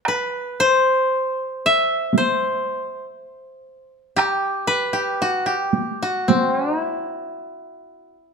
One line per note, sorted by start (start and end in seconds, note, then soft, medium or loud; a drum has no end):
0.05 0.66 B4 medium
0.05 taiko rim medium
0.60 2.17 C5 medium
1.66 3.15 E5 medium
2.13 taiko high medium
2.18 3.89 C5 medium
4.16 4.93 G4 medium
4.16 taiko rim medium
4.67 6.45 B4 medium
4.93 5.28 G4 medium
5.22 5.52 F#4 medium
5.46 6.08 G4 medium
5.73 taiko high soft
6.03 8.14 F#4 medium
6.28 6.81 C4 medium
6.28 taiko high medium
6.81 8.34 E4 medium